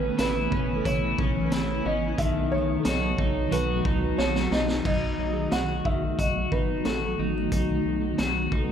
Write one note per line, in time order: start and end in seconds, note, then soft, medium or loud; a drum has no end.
0.00 0.11 A1 loud
0.00 2.16 C#3 medium
0.00 2.16 E3 medium
0.00 4.81 A3 medium
0.00 4.81 B3 medium
0.00 0.19 C#4 soft
0.00 0.19 C#4 medium
0.00 0.20 E4 medium
0.00 2.16 E4 medium
0.00 0.18 B4 medium
0.18 0.48 A1 loud
0.18 0.52 A3 medium
0.18 0.53 C#4 medium
0.18 0.52 E4 medium
0.18 0.53 E4 medium
0.18 0.88 B4 medium
0.18 snare loud
0.18 closed hi-hat medium
0.18 tambourine medium
0.22 0.50 B4 medium
0.51 0.81 A1 loud
0.51 0.85 C#4 medium
0.51 0.86 E4 medium
0.51 0.85 B4 medium
0.51 kick medium
0.56 0.85 C#4 soft
0.76 1.84 A4 medium
0.85 1.15 A1 loud
0.85 1.18 A3 medium
0.85 1.19 C#4 medium
0.85 1.19 E4 medium
0.85 1.16 B4 medium
0.85 1.89 C#5 medium
0.85 kick medium
0.85 closed hi-hat medium
1.17 1.54 B1 medium
1.17 1.52 C#4 medium
1.17 1.53 E4 soft
1.17 1.51 B4 medium
1.17 kick medium
1.22 1.51 C#4 soft
1.44 2.48 B4 medium
1.50 1.81 A1 medium
1.50 1.85 A3 medium
1.50 1.86 C#4 medium
1.50 1.85 E4 medium
1.50 snare loud
1.50 closed hi-hat medium
1.50 tambourine medium
1.55 1.82 B4 medium
1.84 2.15 A1 loud
1.84 2.19 C#4 medium
1.84 2.19 E4 soft
1.84 2.18 B4 medium
1.84 2.20 D#5 medium
1.88 2.20 C#4 soft
2.18 2.77 B1 loud
2.18 2.51 B2 medium
2.18 2.52 D#3 medium
2.18 4.83 D#3 medium
2.18 2.85 D#3 medium
2.18 4.83 F#3 medium
2.18 2.52 F#3 medium
2.18 2.53 B3 medium
2.18 4.83 F#4 medium
2.18 2.49 A4 medium
2.18 2.53 E5 medium
2.18 kick loud
2.18 closed hi-hat medium
2.50 2.84 B3 soft
2.50 2.85 D#4 soft
2.50 2.85 A4 medium
2.50 3.55 C#5 medium
2.55 2.82 F#3 soft
2.80 3.18 F#3 medium
2.80 3.87 A4 medium
2.85 3.15 B1 loud
2.85 3.19 B3 medium
2.85 3.18 D#4 medium
2.85 3.19 F#4 medium
2.85 3.16 A4 medium
2.85 3.90 C#5 soft
2.85 snare loud
2.85 closed hi-hat medium
2.85 tambourine medium
2.90 3.93 D#5 medium
3.17 3.48 B1 loud
3.17 3.51 B3 medium
3.17 3.52 D#4 medium
3.17 3.51 A4 medium
3.17 kick medium
3.22 3.51 F#3 soft
3.50 3.81 B1 loud
3.50 3.84 B2 medium
3.50 3.85 D#3 medium
3.50 3.85 F#3 medium
3.50 3.85 B3 medium
3.50 3.84 D#4 medium
3.50 3.85 F#4 medium
3.50 3.82 A4 medium
3.50 4.15 B4 medium
3.50 closed hi-hat medium
3.84 4.15 C#2 medium
3.84 4.19 D#4 medium
3.84 4.19 D#4 soft
3.84 4.18 A4 medium
3.84 kick medium
3.88 4.15 F#3 soft
4.17 4.48 B1 loud
4.17 4.51 F#3 medium
4.17 4.52 B3 medium
4.17 4.51 D#4 medium
4.17 4.52 F#4 medium
4.17 4.53 C#5 medium
4.17 snare medium
4.22 4.49 A4 medium
4.35 snare medium
4.50 4.81 B1 loud
4.50 4.86 B3 medium
4.50 4.85 D#4 medium
4.50 4.84 D#4 medium
4.50 4.84 A4 medium
4.50 4.84 D#5 medium
4.50 snare medium
4.55 4.87 F#3 medium
4.68 snare medium
4.85 5.15 B1 loud
4.85 8.72 D#3 medium
4.85 8.72 F#3 medium
4.85 8.72 A3 medium
4.85 8.72 B3 medium
4.85 5.52 D#4 medium
4.85 8.72 F#4 medium
4.85 5.54 D#5 medium
4.85 kick medium
4.85 crash medium
5.18 5.48 B1 medium
5.33 6.40 G#4 medium
5.52 5.81 B1 medium
5.52 5.85 F#4 medium
5.52 5.86 F#5 medium
5.52 snare loud
5.52 closed hi-hat medium
5.85 6.15 B1 medium
5.85 6.19 D#3 medium
5.85 6.20 E5 medium
5.85 kick medium
6.19 6.48 B1 loud
6.19 6.52 F#4 medium
6.19 6.53 D#5 medium
6.19 kick medium
6.19 closed hi-hat medium
6.52 6.81 G#1 medium
6.52 6.85 D#4 medium
6.52 6.86 B4 medium
6.52 kick medium
6.85 7.15 A1 medium
6.85 7.19 F#4 medium
6.85 7.32 A4 medium
6.85 snare loud
6.85 closed hi-hat medium
7.06 8.14 A4 soft
7.19 7.48 A1 medium
7.19 7.51 D#4 medium
7.52 7.81 B1 loud
7.52 8.19 D#4 medium
7.52 kick medium
7.52 closed hi-hat medium
7.85 8.15 B1 medium
8.18 8.48 B1 medium
8.18 8.52 F#4 medium
8.18 snare loud
8.18 closed hi-hat medium
8.52 8.72 B1 loud
8.52 8.72 D#4 medium
8.52 8.72 F#4 medium
8.52 kick medium
8.57 8.72 A4 soft
8.62 8.72 B4 soft